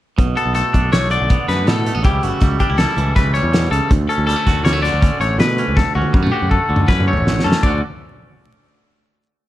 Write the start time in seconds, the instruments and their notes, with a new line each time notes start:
0.18 picked electric bass B1, clean electric guitar B2, kick, closed hi-hat
0.36 clean electric guitar B3 A4, closed hi-hat
0.46 picked electric bass B1
0.55 clean electric guitar A3 A4, closed hi-hat
0.73 picked electric bass B1, clean electric guitar D4, kick, closed hi-hat
0.92 picked electric bass B1, clean electric guitar A3 C#5, snare, closed hi-hat
1.10 clean electric guitar D3 D5, closed hi-hat
1.20 picked electric bass B1
1.30 clean electric guitar B3, kick, closed hi-hat
1.48 picked electric bass F#2, clean electric guitar A3 B4, snare, closed hi-hat
1.67 picked electric bass A2, clean electric guitar B2 A4, snare, closed hi-hat
1.86 clean electric guitar A3, closed hi-hat
1.95 picked electric bass A1, clean electric guitar B3
2.03 picked electric bass C#2, clean electric guitar C#3 E3 G3 A3 E4 G4, kick, closed hi-hat
2.23 picked electric bass G1, clean electric guitar A3 F#4, closed hi-hat
2.41 picked electric bass C#2, clean electric guitar G3, kick, snare, closed hi-hat
2.60 clean electric guitar D4 G4, kick, closed hi-hat
2.69 picked electric bass C#2, clean electric guitar E4
2.78 clean electric guitar G3 A4, snare, closed hi-hat
2.97 picked electric bass C#2, clean electric guitar E3, closed hi-hat
3.16 picked electric bass C#2, clean electric guitar A3 B4, kick, snare, closed hi-hat
3.34 clean electric guitar G3 C#5, closed hi-hat
3.43 picked electric bass E2
3.52 clean electric guitar B2, snare, closed hi-hat
3.70 picked electric bass C#2, clean electric guitar C#3 A4, closed hi-hat
3.91 picked electric bass D2, clean electric guitar D2, kick, closed hi-hat
4.09 clean electric guitar C#4 A4, closed hi-hat
4.18 picked electric bass D2
4.27 clean electric guitar G3 A4, closed hi-hat
4.36 clean electric guitar A3
4.47 picked electric bass D2, clean electric guitar F#4, kick, snare, closed hi-hat
4.64 picked electric bass D2, clean electric guitar G3 C#5, snare, closed hi-hat
4.73 clean electric guitar A3
4.82 clean electric guitar D3 D5, snare, closed hi-hat
4.93 picked electric bass D2
5.01 clean electric guitar C#4, kick, closed hi-hat
5.20 picked electric bass A1, clean electric guitar A3 C#5, closed hi-hat
5.38 clean electric guitar D2 B4, picked electric bass B2, snare, closed hi-hat
5.58 clean electric guitar C#4, closed hi-hat
5.68 picked electric bass C#2
5.76 clean electric guitar D2 A4, kick, snare
5.95 picked electric bass C#2, clean electric guitar C#4 F#4
6.02 high tom
6.13 picked electric bass F#2, clean electric guitar G3, kick
6.23 clean electric guitar A3
6.27 mid tom
6.32 clean electric guitar F#4 G4
6.42 picked electric bass F#2
6.51 clean electric guitar A3 A4, kick
6.69 picked electric bass D2, clean electric guitar D3
6.76 mid tom
6.88 picked electric bass F#2, clean electric guitar C#4 B4, kick, snare
7.00 mid tom
7.08 clean electric guitar A3 C#5
7.13 picked electric bass A1, floor tom
7.27 clean electric guitar D2, snare
7.40 snare
7.44 picked electric bass F#2, clean electric guitar C#4 A4
7.52 snare
7.63 picked electric bass D2, clean electric guitar D2 D3 A3 C#4 D5, kick, crash
7.67 clean electric guitar F#4